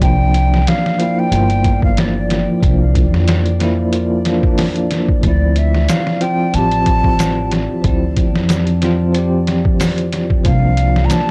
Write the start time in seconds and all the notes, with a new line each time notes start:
Already playing: F3 D5
0.00 C2 F3 A#3 G5, kick, closed hi-hat
0.05 D4
0.34 closed hi-hat
0.54 snare
0.67 F5, snare, closed hi-hat
0.86 snare
0.99 F3 A#3 E4, closed hi-hat
1.19 G5
1.30 G1 F3 A#3, closed hi-hat
1.36 F4
1.50 closed hi-hat
1.64 kick, closed hi-hat
1.82 F5, kick
1.97 D5, snare, closed hi-hat
2.30 snare, closed hi-hat
2.61 C2 F3 A#3, kick, closed hi-hat
2.67 D4
2.95 kick, closed hi-hat
3.13 F2, snare
3.28 snare, closed hi-hat
3.46 closed hi-hat
3.60 F3 A#3 E4, snare, closed hi-hat
3.92 F3 A#3 F4, closed hi-hat
4.25 F3 A#3 D4, snare, closed hi-hat
4.41 F3 A#3, kick
4.47 D4
4.58 snare, open hi-hat
4.76 closed hi-hat
4.91 snare, closed hi-hat
5.08 kick
5.21 D2 F3 C4, kick, closed hi-hat
5.26 E4 D5
5.56 E5, closed hi-hat
5.75 snare
5.89 F5, snare, closed hi-hat, shaker
6.07 snare
6.21 F3 C4 F4 G5, closed hi-hat
6.52 A1 F3 C4 A5, closed hi-hat
6.58 G4
6.71 closed hi-hat
6.86 kick, closed hi-hat
7.04 kick
7.19 snare, closed hi-hat, shaker
7.51 snare, closed hi-hat
7.82 D2 F3 C4, kick, closed hi-hat
7.88 E4
8.16 kick, closed hi-hat
8.35 F2, snare
8.49 snare, closed hi-hat, shaker
8.67 closed hi-hat
8.81 F3 C4 F4, snare, closed hi-hat
9.13 F3 C4, closed hi-hat
9.19 G4
9.47 snare, closed hi-hat
9.65 kick
9.80 snare, open hi-hat, shaker
9.98 closed hi-hat
10.13 snare, closed hi-hat
10.30 kick
10.44 C2 F3 A#3 F4 D5 F5, kick, closed hi-hat
10.50 D4
10.77 closed hi-hat
10.96 snare
11.05 A#5
11.10 A5, snare, closed hi-hat, shaker